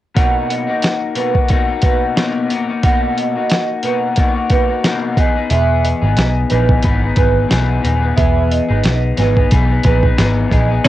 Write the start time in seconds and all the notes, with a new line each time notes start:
0.15 B2 A#3 D#4 F#4 F#5, kick, closed hi-hat
0.50 D#5, closed hi-hat
0.67 A#3 D#4 F#4
0.82 snare, closed hi-hat
1.15 B2 A#3 D#4 F#4 B4, closed hi-hat
1.33 A#3 D#4 F#4, kick
1.49 B2 A#3 D#4 F#4, kick, closed hi-hat
1.68 A#3 D#4 F#4
1.82 B2 A#3 D#4 F#4 B4, kick, closed hi-hat
2.16 B2 A#3 D#4 F#4, snare, closed hi-hat
2.50 B2 A#3 D#4 F#4, closed hi-hat
2.69 A#3 D#4 F#4
2.83 B2 A#3 D#4 F#4 F#5, kick, closed hi-hat
3.17 D#5, closed hi-hat
3.36 A#3 D#4 F#4
3.50 snare, closed hi-hat
3.83 B2 A#3 D#4 F#4 B4, closed hi-hat
4.16 B2 A#3 D#4 F#4, kick, closed hi-hat
4.34 A#3 D#4 F#4
4.49 B2 A#3 D#4 F#4 B4, kick, closed hi-hat
4.68 A#3 D#4 F#4
4.84 B2 A#3 D#4 F#4, snare, closed hi-hat
5.17 E3 B3 D#4 G#4 D#5, kick, closed hi-hat
5.36 B3 D#4 G#4
5.50 E1 E3 B3 G#4 E5, closed hi-hat
5.83 D#5, closed hi-hat
6.02 G#1 B3 D#4 G#4
6.17 B1, snare, closed hi-hat
6.50 A#1 E3 B3 D#4 G#4 B4, closed hi-hat
6.69 kick
6.83 G#1 E3 B3 D#4 G#4, kick, closed hi-hat
7.01 B3 D#4 G#4
7.16 G#1 E3 B3 D#4 G#4 B4, kick, closed hi-hat
7.48 B1 E3 B3 D#4 G#4, snare, closed hi-hat
7.82 D#1 E3 B3 D#4 G#4, closed hi-hat
8.01 B3 D#4 G#4
8.16 E1 E3 B3 G#4 E5, kick, closed hi-hat
8.50 D#5, closed hi-hat
8.69 G#1 B3 D#4 G#4
8.84 B1, snare, closed hi-hat
9.17 G#1 E3 B3 D#4 G#4 B4, snare, closed hi-hat
9.36 B3 D#4 G#4, kick
9.51 B1 E3 B3 D#4 G#4, kick, closed hi-hat
9.69 B3 D#4 G#4
9.83 A#1 E3 B3 D#4 G#4 B4, kick, closed hi-hat
10.02 B3 D#4 G#4, kick
10.17 G#1 E3 B3 D#4 G#4, snare, closed hi-hat
10.50 A#1 E3 B3 D#4 G#4 D#5, kick, closed hi-hat
10.68 B3 D#4 G#4
10.84 B2 F#3 A#3, closed hi-hat